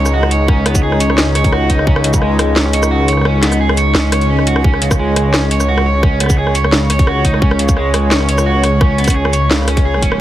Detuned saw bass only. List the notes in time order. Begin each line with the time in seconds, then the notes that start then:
Already playing: C#2
0.65 C#2
1.18 C#2
1.70 C#2
1.87 C#2
2.22 C#2
2.73 C#2
3.43 C#2
3.95 C#2
4.64 C#2
4.99 C#2
5.51 C#2
6.20 C#2
6.72 C#2
7.24 C#2
7.42 C#2
7.76 C#2
8.29 C#2
8.98 C#2
9.50 C#2